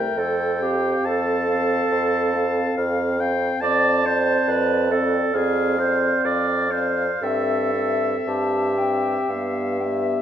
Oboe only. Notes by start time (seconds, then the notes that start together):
Already playing: G5
1.05 A5
2.77 F5
3.21 G5
3.61 A5
5.34 F5
6.24 F5
7.23 E5